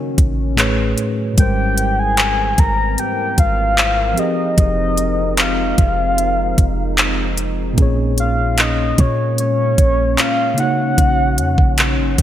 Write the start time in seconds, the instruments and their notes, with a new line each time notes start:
Already playing: tine electric piano C#3 A#3 D#4 F#4 C#5, ambient pad D#3 F#3 C#4
0.18 808-style bass A1, kick, closed hi-hat
0.56 tine electric piano A2 A3 G#4 B4, ambient pad E3, clap, closed hi-hat
0.60 tine electric piano C#5
0.98 closed hi-hat
1.33 tine electric piano G#2 G#3
1.38 808-style bass G#1, tine electric piano G3 A#4, ambient pad C4 A#4, soft synth lead G5, kick, closed hi-hat
1.42 tine electric piano C5
1.78 closed hi-hat
1.99 soft synth lead G#5
2.17 clap, closed hi-hat
2.58 808-style bass G#1, soft synth lead A#5, kick, closed hi-hat
2.98 soft synth lead G5, closed hi-hat
3.38 808-style bass G#1, soft synth lead F5, kick, closed hi-hat
3.78 clap, closed hi-hat
4.13 tine electric piano F3 C4
4.17 ambient pad F3 G#3 D#4, tine electric piano G4 G#4, soft synth lead D#5, closed hi-hat
4.22 tine electric piano D#5
4.58 808-style bass F1, soft synth lead D#5, kick, closed hi-hat
4.97 closed hi-hat
5.37 soft synth lead F5, clap, closed hi-hat
5.78 808-style bass F1, kick, closed hi-hat
6.18 closed hi-hat
6.58 808-style bass F1, kick, closed hi-hat
6.98 clap, closed hi-hat
7.37 closed hi-hat
7.73 tine electric piano A#2 A#3
7.77 808-style bass A#1, ambient pad G#3 A#3 C#4, tine electric piano C#4 G#4, kick, closed hi-hat
7.82 tine electric piano C#5
8.18 soft synth lead F5, closed hi-hat
8.58 soft synth lead D#5, clap, closed hi-hat
8.98 808-style bass A#2, soft synth lead C#5, kick, closed hi-hat
9.38 soft synth lead C#5, closed hi-hat
9.78 808-style bass A#1, kick, closed hi-hat
10.18 soft synth lead F5, clap, closed hi-hat
10.54 tine electric piano C#3 A#3, closed hi-hat
10.58 ambient pad D#3 F#3, tine electric piano D#4 F#4, soft synth lead F#5
10.63 tine electric piano C#5
10.98 808-style bass A#1, kick, closed hi-hat
11.38 808-style bass F2, closed hi-hat
11.58 808-style bass A#1, kick
11.78 clap, closed hi-hat
11.99 808-style bass G#1
12.18 808-style bass A#1, kick, closed hi-hat